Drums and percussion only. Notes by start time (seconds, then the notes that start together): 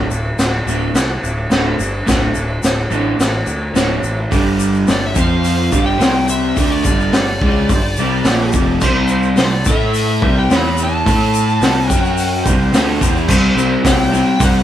0.11 shaker
0.39 snare, crash, shaker
0.68 shaker
0.95 snare, crash, shaker
1.24 shaker
1.51 snare, crash, shaker
1.80 shaker
2.08 kick, snare, crash, shaker
2.35 shaker
2.63 snare, crash, shaker
2.91 shaker
3.20 snare, crash, shaker
3.47 shaker
3.76 snare, crash, shaker
4.04 shaker
4.32 kick, open hi-hat, shaker
4.60 shaker
4.74 shaker
4.88 snare, open hi-hat, shaker
5.15 kick, shaker
5.44 open hi-hat, shaker
5.72 kick, shaker
6.01 snare, open hi-hat, shaker
6.28 shaker
6.57 kick, open hi-hat, shaker
6.85 kick, shaker
7.01 shaker
7.13 snare, open hi-hat, shaker
7.41 kick
7.69 kick, open hi-hat, shaker
7.96 shaker
8.25 snare, open hi-hat, shaker
8.53 kick, shaker
8.81 kick, crash, shaker
9.08 shaker
9.23 shaker
9.37 snare, open hi-hat, shaker
9.65 kick, shaker
9.94 open hi-hat, shaker
10.22 kick
10.51 snare, open hi-hat, shaker
10.78 shaker
11.06 kick, open hi-hat, shaker
11.34 shaker
11.49 shaker
11.62 snare, open hi-hat, shaker
11.90 kick, shaker
12.05 shaker
12.17 open hi-hat, shaker
12.46 kick, shaker
12.74 snare, open hi-hat, shaker
13.01 kick, shaker
13.17 shaker
13.28 kick, crash, shaker
13.58 shaker
13.85 kick, snare, open hi-hat, shaker
14.14 shaker
14.40 kick, open hi-hat, shaker